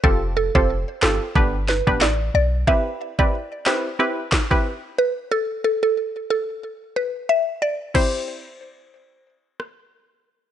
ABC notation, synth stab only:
X:1
M:4/4
L:1/16
Q:"Swing 16ths" 1/4=91
K:C
V:1 name="Synth stab"
[CFGA]3 [CFGA] z2 [CFGA] z [B,DGB] z2 [B,DGB] z4 | [CEGB]3 [CEGB] z2 [CEGB] z [CEGB] z2 [CEGB] z4 | z16 | [CEGc]16 |]